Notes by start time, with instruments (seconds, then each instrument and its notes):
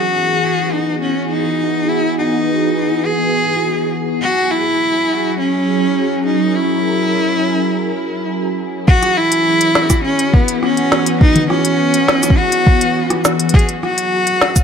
Already playing: string machine E3 B3 C#4 G#4 A#4, cello F#4
0.40 string machine F#4
0.73 cello D#4
1.02 cello C#4
1.31 cello D#4
1.89 cello E4
2.18 cello D#4
3.05 cello G#4
4.22 string machine F#3, cello F#4
4.51 cello E4
4.80 string machine C#4
5.39 cello C#4
5.95 string machine A#4
6.26 cello D#4
6.55 cello E4
8.88 string machine E3, cello F#4, kick
9.03 cross-stick, closed hi-hat
9.17 cello E4, string machine F#4
9.32 string machine B3, closed hi-hat
9.61 closed hi-hat
9.75 snare
9.90 kick, cross-stick, closed hi-hat, shaker
10.04 cello C#4
10.19 closed hi-hat
10.34 cello B3, kick
10.48 closed hi-hat
10.63 cello C#4, cross-stick
10.77 closed hi-hat
10.92 snare
11.06 closed hi-hat
11.21 cello D#4, kick
11.36 closed hi-hat, high tom
11.50 cello C#4, cross-stick
11.65 closed hi-hat
11.94 closed hi-hat
12.08 snare
12.23 cross-stick, closed hi-hat, shaker
12.30 kick
12.38 cello F#4
12.52 closed hi-hat
12.67 kick
12.81 closed hi-hat
13.10 cross-stick, closed hi-hat
13.25 snare, shaker
13.40 closed hi-hat
13.49 closed hi-hat
13.54 string machine F#3, cello G#4, kick
13.59 closed hi-hat
13.69 closed hi-hat
13.75 string machine A#4
13.83 cello F#4, cross-stick
13.98 closed hi-hat
14.11 string machine C#4
14.27 closed hi-hat
14.41 snare
14.56 kick, closed hi-hat, shaker